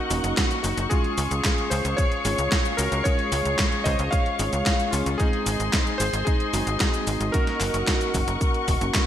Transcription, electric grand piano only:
0.00 0.34 D#4 medium
0.00 0.33 F#4 medium
0.63 0.90 D#4 medium
0.63 0.91 F#4 medium
0.90 1.68 F4 medium
0.90 1.71 G#4 loud
1.70 1.97 G#4 medium
1.70 1.98 C5 loud
1.97 2.75 G#4 medium
1.97 2.80 C#5 loud
2.77 3.04 F#4 medium
2.77 3.05 A#4 loud
3.04 3.82 G#4 medium
3.04 3.87 C#5 loud
3.84 4.11 C5 medium
3.84 4.12 D#5 loud
4.11 4.89 C#5 medium
4.11 4.94 F5 loud
4.91 5.18 C#4 medium
4.91 5.20 F4 medium
5.18 5.96 D#4 medium
5.18 5.99 G#4 loud
5.98 6.23 G#4 medium
5.98 6.24 C5 loud
6.25 7.30 D#4 medium
6.25 7.36 G#4 loud
7.32 9.06 F#4 medium
7.32 9.06 A#4 loud

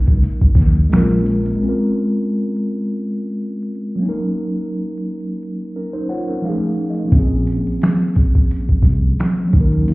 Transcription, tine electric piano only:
0.00 0.84 F#3 medium
0.00 0.86 A#3 medium
0.00 0.87 C#4 medium
0.00 0.89 D#4 medium
0.00 0.91 A#4 medium
0.90 1.54 G#3 medium
0.90 1.60 A#3 medium
0.90 0.99 C4 medium
0.95 1.62 F4 medium
0.95 1.63 A#4 medium
0.99 1.61 C#4 medium
1.56 3.95 G#3 medium
1.56 3.97 C4 medium
1.62 3.99 C#4 medium
1.62 4.01 F4 medium
1.69 4.02 A#4 medium
3.96 6.36 F#3 medium
3.96 6.38 A#3 medium
4.02 5.71 C#4 medium
4.02 5.73 D#4 medium
4.09 5.75 A#4 medium
5.76 5.94 C#4 soft
5.76 5.93 A#4 medium
5.93 6.08 D#4 medium
5.93 6.08 C5 medium
6.09 6.27 F4 medium
6.09 6.27 C#5 medium
6.09 6.41 F#5 medium
6.29 6.44 C#4 medium
6.29 6.61 A#4 medium
6.42 7.04 F3 medium
6.42 6.51 G#3 soft
6.42 7.13 C#4 medium
6.42 6.87 F5 medium
6.47 7.16 A3 medium
6.47 7.14 D#4 medium
6.47 7.15 G#4 medium
6.90 7.11 D#5 medium
7.05 9.46 F3 medium
7.05 9.48 A#3 medium
7.12 9.50 C4 medium
7.12 9.51 C#4 medium
7.19 9.53 G#4 medium
9.48 9.94 F#3 medium
9.48 9.94 A#3 medium
9.54 9.94 C#4 medium
9.54 9.94 D#4 medium
9.61 9.94 A#4 medium

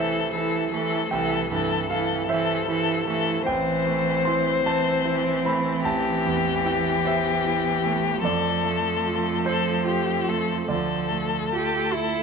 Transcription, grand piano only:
0.00 1.08 C2 soft
0.00 0.73 A3 soft
0.00 0.19 E4 soft
0.00 1.15 C5 medium
0.00 1.08 E5 medium
0.35 0.97 E4 soft
0.73 1.36 A3 soft
1.11 3.45 C2 medium
1.11 1.86 G5 medium
1.51 2.14 G2 soft
1.90 2.53 E3 soft
1.90 2.27 F5 medium
2.29 2.93 C5 soft
2.29 3.44 E5 medium
2.68 3.32 E4 soft
3.08 3.48 A3 soft
3.46 5.82 A1 medium
3.46 4.23 G5 medium
3.86 4.50 A3 soft
4.25 4.91 E4 soft
4.25 4.63 C6 medium
4.66 5.30 C5 soft
4.66 5.42 A5 medium
5.05 5.69 E4 soft
5.45 6.09 A3 soft
5.45 5.83 B5 medium
5.85 8.21 A1 medium
5.85 6.62 A5 medium
6.26 6.90 E2 soft
6.65 7.30 E4 soft
6.65 7.03 G5 medium
7.05 7.70 C5 soft
7.05 8.22 E5 medium
7.45 8.09 E4 soft
7.85 8.25 A3 soft
8.23 10.65 F2 medium
8.23 9.42 D5 medium
8.64 9.29 A3 soft
9.06 9.71 F4 soft
9.45 10.12 A4 soft
9.45 10.66 C5 medium
9.85 10.52 F4 soft
10.28 10.70 A3 soft
10.68 12.23 D2 soft
10.68 12.23 D5 soft
11.11 11.78 A3 soft
11.52 12.19 F4 soft
11.94 12.23 A4 soft

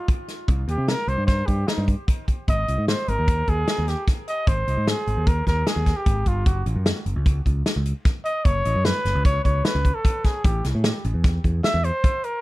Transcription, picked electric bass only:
0.48 0.64 C2 medium
0.68 0.76 D#2 medium
0.78 0.94 C3 medium
1.07 1.16 C2 medium
1.18 1.41 G2 medium
1.48 1.64 G2 medium
1.78 1.94 G2 medium
2.48 2.64 G#1 medium
2.68 2.76 C2 medium
2.78 2.94 G#2 medium
3.08 3.16 G#1 medium
3.19 3.42 D#2 medium
3.48 3.64 D#2 medium
3.78 3.94 D#2 medium
4.47 4.63 G#1 medium
4.67 4.75 C2 medium
4.77 4.93 G#2 medium
5.07 5.15 G#1 medium
5.17 5.41 D#2 medium
5.47 5.63 D#2 medium
5.76 5.92 D#2 medium
6.06 6.24 G#1 medium
6.26 6.44 G1 medium
6.46 6.62 F#1 medium
6.66 6.74 A1 medium
6.76 6.92 F#2 medium
7.06 7.14 F#1 medium
7.16 7.40 C#2 medium
7.46 7.62 C#2 medium
7.76 7.92 C#2 medium
8.45 8.61 F#1 medium
8.66 8.73 A1 medium
8.75 8.91 F#2 medium
9.05 9.13 F#1 medium
9.15 9.39 C#2 medium
9.45 9.61 C#2 medium
9.75 9.91 C#2 medium
10.45 10.60 A1 medium
10.65 10.72 C2 medium
10.75 10.90 A2 medium
11.05 11.12 A1 medium
11.14 11.38 E2 medium
11.44 11.60 E2 medium
11.74 11.90 E2 medium

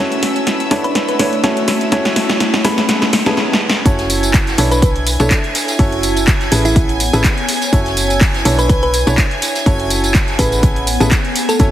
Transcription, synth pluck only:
0.84 0.91 B4 medium
0.95 1.04 B4 medium
1.09 1.21 B4 medium
2.65 2.79 B4 medium
4.71 4.78 B4 medium
4.82 4.91 B4 medium
5.20 5.33 A4 loud
6.65 6.81 E4 medium
8.59 8.66 B4 medium
8.70 8.78 B4 medium
8.83 8.96 B4 loud
10.39 10.54 B4 medium
11.49 11.65 A4 loud

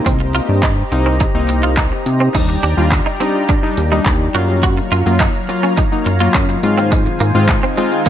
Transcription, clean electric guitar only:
0.06 0.17 C4 medium
0.20 muted clean electric guitar stroke soft
0.35 0.46 F4 medium
0.63 0.74 D#4 medium
0.92 muted clean electric guitar stroke soft
1.06 1.17 C4 medium
1.20 1.31 D#4 medium
1.49 muted clean electric guitar stroke soft
1.63 1.74 F4 medium
1.78 1.89 D#4 medium
1.92 muted clean electric guitar stroke soft
2.20 2.31 C4 medium
2.35 2.46 D#4 medium
2.49 muted clean electric guitar stroke soft
2.63 2.74 D4 medium
2.92 muted clean electric guitar stroke soft
3.06 3.17 D#4 medium
3.20 3.31 C4 medium
3.49 3.60 D4 medium
3.63 muted clean electric guitar stroke soft
3.92 4.03 D#4 medium
4.35 4.46 F#4 medium
4.63 4.74 F#4 medium
4.77 muted clean electric guitar stroke soft
4.92 5.03 F4 medium
5.20 5.31 D#4 medium
5.49 muted clean electric guitar stroke soft
5.63 5.74 C#4 medium
5.78 5.89 D#4 medium
6.06 muted clean electric guitar stroke soft
6.20 6.32 F4 medium
6.35 6.46 C#4 medium
6.49 muted clean electric guitar stroke soft
6.78 6.89 C4 medium
6.92 7.03 G#3 medium
7.06 muted clean electric guitar stroke soft
7.20 7.31 A#3 medium
7.49 muted clean electric guitar stroke soft
7.63 7.74 C4 medium
7.78 7.89 G#3 medium

